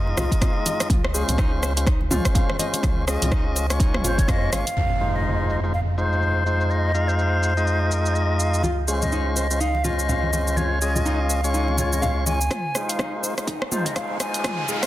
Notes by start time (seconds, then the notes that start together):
Already playing: F2 G#3 D#4 F4 D#5
0.07 muted conga
0.17 C2 F4, cross-stick, high conga, low conga, shaker
0.32 kick, closed hi-hat, shaker
0.41 F5, kick, cross-stick, closed hi-hat, muted conga, low conga, shaker
0.66 D#5, closed hi-hat, high conga, shaker
0.80 cross-stick, closed hi-hat, muted conga, shaker
0.90 C#2 F4, kick, closed hi-hat, mid tom, high conga, shaker
1.04 cross-stick
1.14 G#3 C#4 F4 G#4 C5, shaker
1.28 C#2, closed hi-hat, muted conga, high conga, low conga, shaker
1.38 D#4, kick, cross-stick, shaker
1.63 C5, cross-stick, muted conga, shaker
1.77 G#3 C#4 F4 C5, closed hi-hat, shaker
1.87 D#4, kick, cross-stick, closed hi-hat, shaker
2.01 muted conga
2.11 G#3 C#4 F4 C5, mid tom, high conga, low conga, shaker
2.25 kick, cross-stick, closed hi-hat, shaker
2.35 F5, kick, closed hi-hat, muted conga, low conga, shaker
2.50 cross-stick, high conga
2.59 G#3 C#4 F4 C5 D#5, closed hi-hat, high conga, shaker
2.73 closed hi-hat, muted conga, shaker
2.83 C#2 F4, kick, cross-stick, closed hi-hat, mid tom, high conga, shaker
3.07 G#3 C#4 F4 G#4 D#5, cross-stick, shaker
3.22 C#2, closed hi-hat, muted conga, high conga, low conga, shaker
3.32 D#4, kick, cross-stick, shaker
3.56 C5, closed hi-hat, shaker
3.70 G#3 C#4 F4 C#5, cross-stick, closed hi-hat, shaker
3.80 D#4, kick, closed hi-hat, shaker
3.94 cross-stick, mid tom, muted conga
4.04 G#1 F4 C5, closed hi-hat, high conga, low conga, shaker
4.18 C#5, kick, closed hi-hat, high conga, shaker
4.28 F2 D#5 F5, kick, cross-stick, closed hi-hat, muted conga, low conga, shaker
4.52 G#1 G#3 C#4 F4 C#5 D#5 F5, cross-stick, closed hi-hat, high conga, shaker
4.67 closed hi-hat, muted conga, shaker
4.77 F2, impact
5.01 G#3 D#4 F4 C5, shaker
5.15 D#5, shaker
5.25 shaker
5.50 D#5, shaker
5.64 G#3 D#4 F4 C5, shaker
5.74 F5, shaker
5.98 G#3 D#4 F4 C5, shaker
6.12 shaker
6.22 shaker
6.46 G#3 D#4 F4 C5, shaker
6.61 shaker
6.70 D#5, shaker
6.95 G#3 D#4 F4 F5, shaker
7.08 C5, shaker
7.18 C5, shaker
7.43 shaker
7.57 G#3 D#4 F4 D#5, shaker
7.67 shaker
7.90 A#4, shaker
8.04 C5, shaker
8.14 D#5, shaker
8.39 F5, shaker
8.54 shaker
8.63 C#2 F4, high conga, shaker
8.88 G#3 C#4 F4 G#4 C5, shaker
9.01 D#5, muted conga, high conga, low conga, shaker
9.12 D#4, shaker
9.36 C5 D#5, muted conga, shaker
9.51 G#3 C#4 F4 C5, shaker
9.60 D#4 F5, shaker
9.75 muted conga
9.84 G#3 C#4 F4 C5 D#5, high conga, low conga, shaker
9.99 shaker
10.09 F5, muted conga, low conga, shaker
10.23 high conga
10.33 G#3 C#4 F4 C5 D#5, high conga, shaker
10.47 muted conga, shaker
10.57 F4 C#5, high conga, shaker
10.82 G#3 C#4 F4 G#4 D#5, shaker
10.95 D#5, muted conga, high conga, low conga, shaker
11.06 D#4 F5, shaker
11.30 C5, shaker
11.44 G#3 C#4 F4 C#5, shaker
11.54 D#4, shaker
11.68 muted conga
11.77 F4 C#5, high conga, low conga, shaker
11.92 D#5, high conga, shaker
12.02 F5, muted conga, low conga, shaker
12.26 G#3 C#4 F4 C#5 D#5 G#5, high conga, shaker
12.41 muted conga, shaker
12.50 F4, kick, cross-stick, closed hi-hat, mid tom, riser, shaker
12.75 G#3 D#4 F4 G#4 C5, cross-stick, shaker
12.89 F5, closed hi-hat, shaker
12.99 D#4, kick, cross-stick, shaker
13.23 C5, shaker
13.38 G#3 D#4 F4 C5, cross-stick, closed hi-hat, shaker
13.47 D#4, kick, closed hi-hat, shaker
13.62 cross-stick
13.71 G#3 D#4 F4 C5, mid tom, shaker
13.86 D#5, kick, closed hi-hat, shaker
13.95 F5, kick, cross-stick, closed hi-hat, shaker
14.19 G#3 D#4 F4 C5 D#5 G#5, cross-stick, closed hi-hat, shaker
14.34 closed hi-hat, shaker
14.44 F4, kick, cross-stick, closed hi-hat, mid tom, shaker
14.68 G#3 D#4 F4 G#4 F5, shaker
14.82 F5, cross-stick, closed hi-hat, shaker